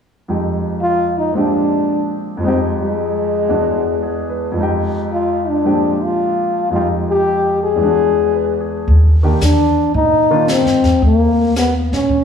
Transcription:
0.28 grand piano F2 F3 G#3 D#4 G4
0.81 trombone F4
1.18 trombone D#4
1.33 grand piano A#2 F3 G#3 C4 D4
1.37 trombone D4, grand piano G4
2.37 grand piano F2 F3
2.43 grand piano G#3 D#4, trombone C4
2.48 grand piano G4
2.80 trombone G#3
3.49 grand piano E2 E3 G#3 D4 F#4
4.03 grand piano G#4
4.29 grand piano B4
4.52 grand piano F2 F3
4.57 grand piano G#3 D#4
4.63 grand piano G4
5.13 trombone F4
5.49 trombone D4
5.65 grand piano A#2 F3 G#3 C4 D4 G4
6.04 trombone F4
6.70 grand piano F2 F3 G#3 D#4, trombone F4
6.75 grand piano G4
7.10 trombone G4
7.63 trombone G#4
7.76 grand piano E2 E3
7.80 grand piano G#3 D4
7.86 grand piano F#4
8.34 grand piano B4
8.61 grand piano G#4
8.88 upright bass D#2, brush sweep, kick
9.23 grand piano D#3 A#3 D4 G4
9.41 upright bass E2, trombone D4, snare, hi-hat pedal
9.94 upright bass A#2, trombone D#4, brush sweep, kick
10.31 grand piano D#3 A#3 D4 F4
10.48 trombone C4, snare, hi-hat pedal
10.66 upright bass G2, snare
10.83 upright bass E2, snare
11.02 upright bass D#2, trombone A#3, brush sweep, kick
11.56 trombone B3, snare, hi-hat pedal
11.92 upright bass A#2, trombone C#4, snare
12.09 upright bass A#1, brush sweep, kick

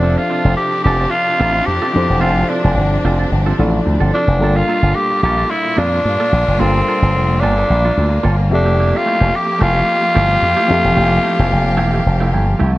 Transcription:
Already playing: slap bass F1, string section C3 F3 D4, reed electric piano F3 D4 A4 C5 E5, tenor saxophone D4
0.02 clean electric guitar C4 F4 A4
0.18 tenor saxophone F4
0.30 clean electric guitar C4 F4 A4
0.45 slap bass F1, clean electric guitar C4 F4 A4
0.57 tenor saxophone G4, muted clean electric guitar stroke
0.73 muted clean electric guitar stroke
0.84 slap bass F1, clean electric guitar C4 F4 A4, tenor saxophone G4
1.00 clean electric guitar C4 F4 A4
1.11 tenor saxophone F4, muted clean electric guitar stroke
1.28 muted clean electric guitar stroke
1.39 slap bass A1, clean electric guitar C4 F4 A4
1.55 muted clean electric guitar stroke
1.66 slap bass F2, tenor saxophone G4, muted clean electric guitar stroke
1.82 clean electric guitar C4 F4 A4
1.94 slap bass F2, reed electric piano F3 D4 E4 A4 C5, muted clean electric guitar stroke
2.09 slap bass E1, muted clean electric guitar stroke
2.21 slap bass F1, clean electric guitar C4 F4 A4, tenor saxophone F4
2.49 clean electric guitar C4 F4 A4, tenor saxophone D4
2.63 slap bass F1, clean electric guitar C4 F4 A4
2.77 slap bass G1, muted clean electric guitar stroke
2.91 muted clean electric guitar stroke
3.04 slap bass F1, clean electric guitar C4 F4 A4
3.19 clean electric guitar C4 F4 A4
3.32 slap bass G1
3.46 clean electric guitar C4 F4 A4
3.58 slap bass A1, reed electric piano F3 D4 E4 A4 D5, clean electric guitar C4 F4 A4
3.72 muted clean electric guitar stroke
3.86 slap bass D2, muted clean electric guitar stroke
4.00 slap bass G1, clean electric guitar C4 F4 A4
4.14 clean electric guitar C4 F4 A4, tenor saxophone D4
4.28 slap bass F1, muted clean electric guitar stroke
4.39 slap bass G1, string section A#2 A#3 F4, reed electric piano G3 D4 F4 A4 A#4, clean electric guitar A#3
4.43 clean electric guitar F4 A4
4.56 tenor saxophone F4
4.68 clean electric guitar A#3 F4 A4
4.82 slap bass G1, clean electric guitar A#3 F4 A4
4.95 tenor saxophone G4, muted clean electric guitar stroke
5.11 muted clean electric guitar stroke
5.23 slap bass A#1, clean electric guitar A#3 F4 A4, tenor saxophone G4
5.37 clean electric guitar A#3 F4 A4
5.50 tenor saxophone E4, muted clean electric guitar stroke
5.65 muted clean electric guitar stroke
5.76 slap bass F2, clean electric guitar A#3 F4 A4, tenor saxophone D4
5.91 muted clean electric guitar stroke
6.04 slap bass G2, muted clean electric guitar stroke
6.20 clean electric guitar A#3 F4 A4
6.32 slap bass A#1
6.48 slap bass F#1, muted clean electric guitar stroke
6.59 slap bass G1, reed electric piano G3 D4 F4 A4 A#4, clean electric guitar A#3 F4 A4, tenor saxophone C4
6.87 clean electric guitar A#3 F4 A4
7.02 slap bass G1, clean electric guitar A#3 F4 A4
7.15 slap bass F1, muted clean electric guitar stroke
7.30 muted clean electric guitar stroke
7.41 slap bass G1, clean electric guitar A#3 F4 A4, tenor saxophone D4
7.57 clean electric guitar A#3 F4 A4
7.70 slap bass A#1, muted clean electric guitar stroke
7.85 clean electric guitar A#3 F4 A4
7.97 slap bass D2, clean electric guitar A#3 F4 A4
8.12 muted clean electric guitar stroke
8.23 slap bass G1, clean electric guitar A#3 F4 A4
8.37 muted clean electric guitar stroke
8.50 slap bass F1, reed electric piano F3 C4 G4 A4 E5, string section F3 G4, muted clean electric guitar stroke
8.54 tenor saxophone D4
8.66 clean electric guitar A3 E4 G4
8.79 clean electric guitar A3 E4 G4
8.97 tenor saxophone F4
9.06 clean electric guitar A3 E4 G4
9.20 slap bass F1, clean electric guitar A3 E4 G4
9.33 tenor saxophone G4, muted clean electric guitar stroke
9.47 muted clean electric guitar stroke
9.59 slap bass F1, clean electric guitar A3 E4 G4, tenor saxophone F4
9.73 clean electric guitar A3 E4 G4
9.86 muted clean electric guitar stroke
10.01 muted clean electric guitar stroke
10.15 slap bass G1, clean electric guitar A3 E4 G4
10.30 muted clean electric guitar stroke
10.42 slap bass F2, muted clean electric guitar stroke
10.57 clean electric guitar A3 E4 G4
10.68 slap bass F2, reed electric piano F3 C4 G4 A4 E5
10.84 slap bass E1, muted clean electric guitar stroke
10.96 slap bass F1, clean electric guitar A3 E4 G4
11.23 clean electric guitar A3 E4 G4
11.37 slap bass F1, clean electric guitar A3 E4 G4
11.51 slap bass F1, muted clean electric guitar stroke
11.65 muted clean electric guitar stroke
11.77 slap bass E1, clean electric guitar A3 E4 G4
11.93 clean electric guitar A3 E4 G4
12.05 slap bass F1, muted clean electric guitar stroke
12.20 clean electric guitar A3 E4 G4
12.33 slap bass G1, clean electric guitar A3 E4 G4
12.47 muted clean electric guitar stroke
12.59 slap bass C2, clean electric guitar A3 E4 G4
12.74 muted clean electric guitar stroke

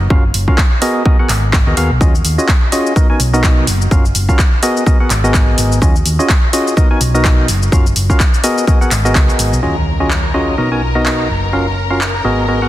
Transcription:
0.10 synth stab C#4 F4 F#4 A#4 F5, kick
0.34 fingered electric bass F#1, open hi-hat
0.48 synth stab C#4 F4 F#4 A#4 F5, kick
0.58 kick, clap
0.82 synth stab B3 F#4 G#4 A#4 D#5, open hi-hat
1.06 synth stab B3 F#4 G#4 A#4 D#5, kick
1.19 synth stab B3 F#4 G#4 A#4 F#5
1.29 fingered electric bass G#1, clap, open hi-hat
1.53 kick, clap
1.67 fingered electric bass D#2, synth stab B3 F#4 G#4 A#4 D#5
1.77 fingered electric bass D#2, synth stab B3 F#4 G#4 A#4 F5, open hi-hat
1.91 fingered electric bass B1
2.01 synth stab C#4 F4 F#4 G#4 D#5, kick, shaker
2.15 shaker
2.25 fingered electric bass D#2, open hi-hat, shaker
2.38 synth stab C#4 F4 F#4 G#4 D#5, shaker
2.48 kick, clap, shaker
2.72 synth stab C#4 F4 F#4 G#4 D#5, open hi-hat, shaker
2.86 shaker
2.96 synth stab B3 D#4 F#4 A#4 D#5, kick, shaker
3.10 synth stab B3 D#4 F#4 A#4 G#5
3.20 fingered electric bass B1, open hi-hat, shaker
3.34 synth stab B3 D#4 F#4 A#4 D#5, shaker
3.44 kick, clap, shaker
3.67 fingered electric bass F#1, open hi-hat, shaker
3.81 shaker
3.91 fingered electric bass F#1, synth stab C#4 F4 F#4 A#4 F5, kick, shaker
4.05 shaker
4.15 fingered electric bass F#1, open hi-hat, shaker
4.29 synth stab C#4 F4 F#4 A#4 F5, kick, shaker
4.39 kick, clap, shaker
4.63 synth stab B3 F#4 G#4 A#4 D#5, open hi-hat, shaker
4.77 shaker
4.86 synth stab B3 F#4 G#4 A#4 D#5, kick, shaker
5.00 synth stab B3 F#4 G#4 A#4 F#5
5.10 fingered electric bass G#1, clap, open hi-hat, shaker
5.24 synth stab B3 F#4 G#4 A#4 D#5, shaker
5.34 kick, clap, shaker
5.58 fingered electric bass G#1, open hi-hat, shaker
5.72 shaker
5.82 fingered electric bass D#2, synth stab C#4 F4 F#4 G#4 D#5, kick, shaker
5.96 shaker
6.06 fingered electric bass D#2, open hi-hat, shaker
6.19 synth stab C#4 F4 F#4 G#4 D#5, shaker
6.29 kick, clap, shaker
6.53 synth stab C#4 F4 F#4 G#4 D#5, open hi-hat, shaker
6.67 shaker
6.77 synth stab B3 D#4 F#4 A#4 D#5, kick, shaker
6.91 synth stab B3 D#4 F#4 A#4 G#5
7.01 fingered electric bass B1, open hi-hat, shaker
7.15 synth stab B3 D#4 F#4 A#4 D#5, shaker
7.25 kick, clap, shaker
7.48 fingered electric bass F#1, open hi-hat, shaker
7.63 shaker
7.72 synth stab C#4 F4 F#4 A#4 F5, kick, shaker
7.86 shaker
7.96 fingered electric bass F#1, open hi-hat, shaker
8.10 synth stab C#4 F4 F#4 A#4 F5, kick, shaker
8.20 kick, clap, shaker
8.34 shaker
8.44 synth stab B3 F#4 G#4 A#4 D#5, open hi-hat, shaker
8.58 shaker
8.67 synth stab B3 F#4 G#4 A#4 D#5, kick, shaker
8.81 synth stab B3 F#4 G#4 A#4 F#5, shaker
8.91 fingered electric bass G#1, clap, open hi-hat, shaker
9.05 synth stab B3 F#4 G#4 A#4 D#5, shaker
9.15 fingered electric bass C#2, kick, clap, shaker
9.29 shaker
9.39 fingered electric bass G#1, open hi-hat, shaker
9.53 fingered electric bass B1, shaker
9.63 synth stab C#4 F4 F#4 G#4 D#5, string section A#4 A#5, impact
10.00 synth stab C#4 F4 F#4 G#4 D#5
10.11 clap
10.34 synth stab C#4 F4 F#4 G#4 D#5
10.58 fingered electric bass B1, synth stab B3 D#4 F#4 A#4 D#5
10.72 synth stab B3 D#4 F#4 A#4 G#5
10.95 synth stab B3 D#4 F#4 A#4 D#5
11.06 clap
11.29 fingered electric bass F#1
11.53 synth stab C#4 F4 F#4 A#4 F5
11.90 synth stab C#4 F4 F#4 A#4 F5
12.01 clap
12.25 fingered electric bass G#1, synth stab B3 F#4 G#4 A#4 D#5
12.48 synth stab B3 F#4 G#4 A#4 D#5
12.62 synth stab B3 F#4 G#4 A#4 F#5

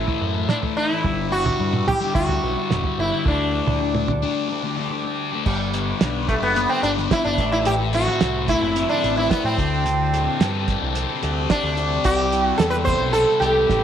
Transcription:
Already playing: sitar E4, transistor combo organ A4 C5 E5 B5
0.06 distorted electric guitar E3 A3, floor tom
0.20 picked electric bass F#2, distorted electric guitar A2 E3 A3
0.34 distorted electric guitar E3 A3
0.48 distorted electric guitar A2 E3 A3, sitar D4, snare, mid tom
0.62 distorted electric guitar E3 A3, floor tom
0.77 sitar E4
0.89 distorted electric guitar E3 A3
1.03 picked electric bass G1, distorted electric guitar G2 D3 G3, transistor combo organ G3 D5, kick, floor tom
1.30 distorted electric guitar G2 D3 G3, sitar F#4
1.46 floor tom, mid tom
1.59 distorted electric guitar G2 D3 G3, picked electric bass G2
1.73 distorted electric guitar D3 G3, mid tom
1.87 sitar G4, muted distorted electric guitar stroke, floor tom, mid tom
2.00 distorted electric guitar D3 G3
2.15 picked electric bass D2, sitar F#4, kick
2.28 distorted electric guitar D3 G3, floor tom
2.42 picked electric bass B1, distorted electric guitar G2 D3 G3
2.56 distorted electric guitar D3 G3
2.70 picked electric bass E1, distorted electric guitar G2 D3 G3, snare, mid tom
2.84 distorted electric guitar D3 G3, floor tom
2.98 picked electric bass G1, sitar E4
3.11 distorted electric guitar D3 G3
3.25 picked electric bass D2, distorted electric guitar D3 A3 D4, sitar D4, transistor combo organ A5 D6, kick, floor tom
3.53 distorted electric guitar D3 A3 D4
3.67 picked electric bass D2, floor tom, mid tom
3.80 distorted electric guitar D3 A3 D4
3.94 distorted electric guitar A3 D4, mid tom
4.08 muted distorted electric guitar stroke, floor tom, mid tom
4.22 distorted electric guitar A3 D4
4.49 distorted electric guitar A3 D4
4.62 distorted electric guitar D3 A3 D4
4.76 distorted electric guitar A3 D4
4.89 distorted electric guitar D3 A3 D4
5.04 distorted electric guitar A3 D4
5.32 distorted electric guitar A3 D4
5.46 picked electric bass G1, distorted electric guitar G3, transistor combo organ G4 D5 F#5 B5, kick, crash
5.74 distorted electric guitar B3, closed hi-hat
6.01 picked electric bass B1, distorted electric guitar D4, snare, closed hi-hat
6.28 distorted electric guitar G3, sitar A3, kick, closed hi-hat
6.42 picked electric bass F#1, sitar B3
6.56 distorted electric guitar B3, closed hi-hat
6.69 sitar C4
6.83 picked electric bass G1, sitar D4, distorted electric guitar D4, closed hi-hat
6.98 snare
7.11 distorted electric guitar B3, sitar E4, kick, snare, closed hi-hat
7.25 picked electric bass G1, sitar D4
7.38 picked electric bass A1, distorted electric guitar A2, transistor combo organ A4 C5 E5, kick, closed hi-hat
7.52 sitar E4
7.65 distorted electric guitar A2, sitar G4, closed hi-hat
7.93 distorted electric guitar C4, sitar F#4, closed hi-hat
8.07 snare
8.21 picked electric bass C2, distorted electric guitar E4, snare, closed hi-hat
8.48 distorted electric guitar A3, sitar E4, kick, closed hi-hat
8.62 picked electric bass F#1
8.75 distorted electric guitar C4, closed hi-hat
8.90 sitar D4
9.03 picked electric bass A1, distorted electric guitar E4, closed hi-hat
9.17 sitar E4
9.30 sitar B3, distorted electric guitar C4, kick, snare, closed hi-hat
9.44 picked electric bass A2, sitar C4
9.57 picked electric bass D2, distorted electric guitar D3, transistor combo organ D5 G5 A5, kick, closed hi-hat
9.85 distorted electric guitar D3, closed hi-hat
10.13 distorted electric guitar C4, closed hi-hat
10.40 picked electric bass G2, distorted electric guitar G4, snare, closed hi-hat
10.67 distorted electric guitar G3, kick, closed hi-hat
10.82 picked electric bass C2
10.95 distorted electric guitar C4, closed hi-hat
11.23 picked electric bass D2, distorted electric guitar G4, closed hi-hat
11.50 distorted electric guitar C4, sitar D4, kick, snare, closed hi-hat
11.63 picked electric bass D2
11.77 distorted electric guitar G4, closed hi-hat
12.04 picked electric bass C2, distorted electric guitar C3, sitar G4, transistor combo organ B4 E5 G5, kick, closed hi-hat
12.32 distorted electric guitar G3, closed hi-hat
12.46 sitar F#4
12.58 picked electric bass E2, distorted electric guitar B3, sitar A4, snare, closed hi-hat
12.70 sitar B4
12.85 distorted electric guitar C3, sitar C5, kick, closed hi-hat
13.00 picked electric bass B1
13.13 distorted electric guitar G3, sitar A4, closed hi-hat
13.40 picked electric bass C2, distorted electric guitar B3, sitar G4, closed hi-hat
13.69 picked electric bass A1, distorted electric guitar G3, kick, snare

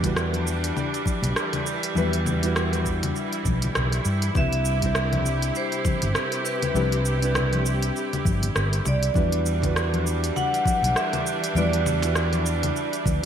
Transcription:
Already playing: fretless electric bass E2, string section E3 G3 D4
0.01 nylon-string guitar G3 D4 E4, kick, closed hi-hat, low conga, cabasa
0.05 nylon-string guitar F#4 B4
0.16 cross-stick, cabasa
0.33 closed hi-hat, high conga
0.47 cabasa
0.64 closed hi-hat, cabasa
0.77 low conga, cabasa
0.94 closed hi-hat, cabasa
1.06 kick, high conga, cabasa
1.22 fretless electric bass B1, closed hi-hat, low conga, cabasa
1.36 cross-stick, cabasa
1.53 closed hi-hat, low conga, cabasa
1.66 cabasa
1.83 closed hi-hat, cabasa
1.95 fretless electric bass E2, nylon-string guitar G3 D4 E4 F#4 B4, string section E4, high conga, cabasa
2.13 closed hi-hat, cabasa
2.26 low conga, cabasa
2.41 nylon-string guitar G3 D4 E4, closed hi-hat, cabasa
2.45 nylon-string guitar F#4 B4
2.56 cross-stick, cabasa
2.73 closed hi-hat, high conga, cabasa
2.86 kick, cabasa
3.03 closed hi-hat, low conga, cabasa
3.16 cabasa
3.33 closed hi-hat, cabasa
3.45 fretless electric bass B1, kick, high conga, cabasa
3.62 closed hi-hat, low conga, cabasa
3.75 fretless electric bass B1, cross-stick, low conga, cabasa
3.92 closed hi-hat, cabasa
4.05 fretless electric bass G2, cabasa
4.22 closed hi-hat, cabasa
4.34 fretless electric bass C2, string section C3 G4, nylon-string guitar G3 C4 D4 E4 B4, vibraphone E5, kick, high conga, low conga, cabasa
4.53 closed hi-hat
4.65 cabasa
4.81 nylon-string guitar G3 C4 D4, kick, closed hi-hat, cabasa
4.85 nylon-string guitar E4 C5
4.95 cross-stick, cabasa
5.13 closed hi-hat, high conga, low conga
5.26 cabasa
5.42 closed hi-hat, cabasa
5.55 vibraphone C5, cabasa
5.72 closed hi-hat, cabasa
5.85 kick, high conga, low conga, cabasa
6.02 fretless electric bass G1, closed hi-hat, low conga, cabasa
6.15 cross-stick, cabasa
6.32 closed hi-hat, cabasa
6.45 vibraphone B4, cabasa
6.62 closed hi-hat, low conga, cabasa
6.74 fretless electric bass C2, nylon-string guitar G3 C4 D4 E4 B4, high conga, cabasa
6.92 closed hi-hat
7.05 cabasa
7.19 nylon-string guitar G3 C4 D4, closed hi-hat, cabasa
7.23 nylon-string guitar E4 B4
7.35 cross-stick, low conga, cabasa
7.53 closed hi-hat, high conga
7.66 cabasa
7.83 closed hi-hat, cabasa
7.96 cabasa
8.13 closed hi-hat, low conga, cabasa
8.25 fretless electric bass G1, kick, high conga, cabasa
8.42 closed hi-hat, low conga, cabasa
8.56 fretless electric bass G1, cross-stick, cabasa
8.73 closed hi-hat, cabasa
8.85 fretless electric bass C2, vibraphone D5, low conga, cabasa
9.03 closed hi-hat, cabasa
9.14 fretless electric bass E2, string section E3 G3 D4, nylon-string guitar G3 D4 E4 F#4 B4, kick, high conga, cabasa
9.32 closed hi-hat
9.46 cabasa
9.60 nylon-string guitar G3 D4 E4 F#4, kick, closed hi-hat, low conga, cabasa
9.66 nylon-string guitar B4
9.76 cross-stick, cabasa
9.94 closed hi-hat, high conga
10.07 cabasa
10.24 closed hi-hat, cabasa
10.36 vibraphone F#5, low conga, cabasa
10.54 closed hi-hat, cabasa
10.66 kick, high conga, cabasa
10.82 fretless electric bass B1, closed hi-hat, low conga, cabasa
10.96 vibraphone E5, cross-stick, cabasa
11.13 closed hi-hat, low conga, cabasa
11.27 cabasa
11.44 closed hi-hat, cabasa
11.55 fretless electric bass E2, nylon-string guitar G3 D4 E4 F#4 B4, vibraphone D5, high conga, cabasa
11.73 closed hi-hat
11.86 low conga, cabasa
12.01 nylon-string guitar G3 D4 E4, closed hi-hat, cabasa
12.05 nylon-string guitar F#4 B4
12.15 cross-stick, cabasa
12.33 closed hi-hat, high conga, cabasa
12.46 cabasa
12.63 closed hi-hat, low conga, cabasa
12.76 cabasa
12.93 closed hi-hat, cabasa
13.06 fretless electric bass D2, kick, high conga, cabasa

